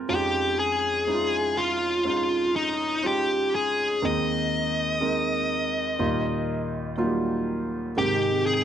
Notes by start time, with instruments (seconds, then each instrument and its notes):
Already playing: grand piano G#3 C4 F4 A#4 G5
0.09 grand piano F2 F3 G#3 C#4 D#4 F4, lead electric guitar G4
0.59 lead electric guitar G#4
1.07 grand piano G#3 C#4 D#4 E4
1.14 grand piano F4
1.57 lead electric guitar F4
2.05 grand piano G#3 C#4 D#4 F4
2.56 lead electric guitar D#4
3.03 grand piano G#3 C#4 D#4 F4, lead electric guitar G4
3.55 lead electric guitar G#4
4.02 grand piano D#2 D#3 G#3 C4 D#4 G#4, lead electric guitar D#5
5.01 grand piano G#3 C4 D#4 A#4
5.99 grand piano D#2 A#2 G3 A#3 D#4 F4
6.97 grand piano F#3 A#3 D#4 F4
7.04 grand piano G3
7.97 grand piano G#2 D#3 G#3 C4 D#4 G5, tonewheel organ C3 G#3 G5, lead electric guitar G4
8.46 lead electric guitar G#4